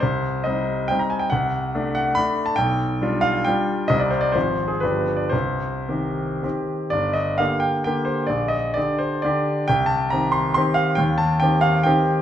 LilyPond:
\new Staff \with { instrumentName = "Grand piano" } { \time 3/4 \key c \minor \tempo 4 = 136 << { c''4 ees''4 g''16 bes''16 aes''16 g''16 | fis''4. fis''8 b''8. a''16 | g''4. f''8 g''4 | ees''16 d''16 c''16 d''16 c''8. aes'16 b'8. d''16 |
c''2 r4 | \key g \minor d''8 ees''8 f''8 g''8 g''8 c''8 | d''8 ees''8 d''8 c''8 d''4 | g''8 a''8 bes''8 c'''8 c'''8 f''8 |
g''8 a''8 g''8 f''8 g''4 | } \\ { c,4 <g c' ees'>4 <g c' ees'>4 | c,4 <a d'>4 <a d'>4 | b,,4 <g d' f'>4 <g d' f'>4 | <c, g c' ees'>4 <aes,, f c' f'>4 <g,, f d' g'>4 |
c,4 <ees c' g'>4 <ees c' g'>4 | g,,4 <d bes g'>4 <d bes g'>4 | bes,,4 <d d' g'>4 <d d' g'>4 | c,4 <ees c' g'>4 <ees c' g'>4 |
ees,4 <ees c' g'>4 <ees c' g'>4 | } >> }